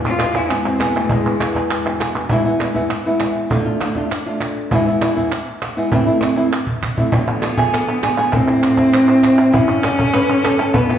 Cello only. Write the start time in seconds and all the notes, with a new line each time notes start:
0.06 F4
0.37 E4
0.50 B3
0.66 C4
0.80 B3
0.95 A3
1.09 G#3
7.11 B3
8.32 C4
9.54 C#4
10.73 B3